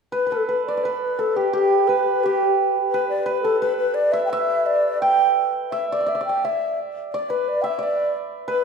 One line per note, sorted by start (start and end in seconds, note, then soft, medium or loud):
0.12 0.26 B4 medium
0.12 0.33 B4 medium
0.27 0.48 B4 soft
0.31 0.47 A4 medium
0.31 1.18 A4 soft
0.48 0.65 B4 medium
0.48 0.85 B4 medium
0.66 0.85 D5 medium
0.66 0.77 D5 soft
0.77 3.23 D5 soft
0.84 1.01 B4 medium
0.84 1.88 B4 medium
1.02 1.21 B4 medium
1.19 3.44 A4 soft
1.19 1.38 A4 medium
1.36 1.53 G4 medium
1.53 2.25 G4 medium
1.53 1.89 G4 medium
1.88 2.25 B4 medium
1.88 2.94 B4 medium
2.24 2.76 G4 medium
2.24 5.39 G4 medium
2.91 3.08 B4 medium
2.91 3.25 B4 medium
3.09 3.23 D5 medium
3.23 3.42 B4 medium
3.23 3.62 B4 medium
3.23 3.27 D5 medium
3.43 3.60 A4 medium
3.43 6.37 A4 medium
3.61 3.77 B4 medium
3.61 6.34 B4 medium
3.77 3.96 B4 medium
3.94 4.14 D5 medium
4.12 4.24 E5 medium
4.12 4.32 E5 medium
4.25 4.31 G5 medium
4.30 4.68 E5 medium
4.30 5.72 E5 medium
4.66 5.02 D5 medium
5.02 7.09 G5 medium
5.02 5.52 G5 medium
5.71 5.89 E5 medium
5.71 6.44 E5 medium
5.90 6.10 D5 medium
5.90 6.00 D5 medium
6.01 6.06 D5 soft
6.06 6.14 D5 medium
6.06 6.25 E5 medium
6.15 6.20 D5 soft
6.21 6.29 D5 medium
6.25 7.14 D5 soft
6.25 6.46 G5 medium
6.45 7.63 E5 medium
6.45 6.79 E5 medium
7.12 7.31 D5 medium
7.12 7.78 D5 medium
7.30 7.50 B4 medium
7.30 8.47 B4 medium
7.49 7.63 D5 medium
7.62 8.64 E5 medium
7.62 7.68 G5 medium
7.66 7.74 E5 medium
7.74 7.85 E5 soft
7.79 8.64 D5 medium
7.83 8.16 D5 medium
8.48 8.64 B4 medium